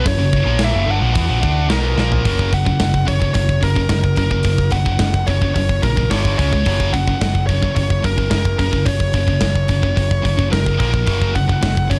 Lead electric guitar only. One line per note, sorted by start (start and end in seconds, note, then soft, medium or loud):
0.07 0.63 C#5 loud
0.64 0.90 E5 loud
0.91 1.95 F#5 medium
1.71 1.96 A#4 medium
2.00 2.55 A#4 medium
2.54 3.04 F#5 medium
3.08 3.33 C#5 medium
3.34 3.63 C#5 medium
3.63 3.90 A#4 medium
3.91 4.17 A#4 medium
4.18 4.74 A#4 medium
4.72 5.29 F#5 medium
5.27 5.53 C#5 medium
5.55 5.83 C#5 medium
5.82 6.11 A#4 medium
6.10 6.37 C#5 medium
6.38 6.95 C#5 medium
6.93 7.44 F#5 loud
7.47 7.73 C#5 medium
7.76 8.04 C#5 medium
8.04 8.30 A#4 medium
8.31 8.58 A#4 medium
8.59 8.87 A#4 medium
8.85 10.48 C#5 loud
10.52 10.79 A#4 medium
10.80 11.37 A#4 medium
11.35 11.92 F#5 loud
11.90 11.99 C#5 medium